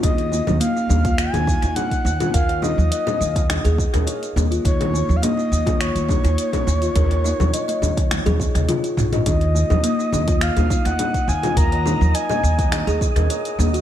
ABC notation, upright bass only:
X:1
M:4/4
L:1/16
Q:1/4=104
K:Dbmix
V:1 name="Upright bass" clef=bass
E,,3 E,, z2 E,,3 E,,2 E,, z2 E,,2 | E,,3 E,, z2 E,,3 E,,2 E,, z2 E,,2 | E,,3 E,, z2 E,,3 E,,2 E,, z2 E,,2 | E,,3 E,, z2 E,,3 E,,2 E,, z2 B,,,2 |
E,,3 E,, z2 E,,3 E,,2 E,, z2 E,,2 | E,,3 E,, z2 E,,3 E,,2 E,, z2 E,,2 |]